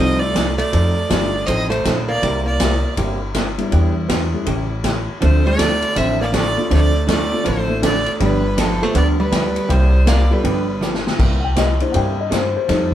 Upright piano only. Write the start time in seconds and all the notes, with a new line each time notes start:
Already playing: G3 A3 D#4 F4
1.11 G3 A3 D#4 F4
3.58 G3 B3 D4 E4
4.33 G3 A3 C#4 E4
5.21 A3 C4 D4 F4
6.57 A3 C4 D4 F4
7.32 A3 C4 D4 F4
7.69 A3 C4 D4 E4
8.19 A3 B3 F4 G4
8.81 A3 B3 F4 A4
10.30 B3 F4 G4 A4
11.40 F#5
11.44 G5
11.58 D#5
11.80 E3 A#3 D4 C5
11.92 F#5
11.96 G5
12.20 D#5
12.33 C5
12.57 C5
12.68 G3 A3 D#4